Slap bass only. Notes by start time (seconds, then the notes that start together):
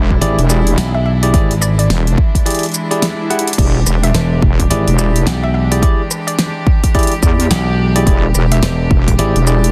0.21 G#1
0.78 B1
1.34 G#1
4.14 E1
4.71 G#1
5.26 B1
7.51 B1
8.63 E1
9.18 G#1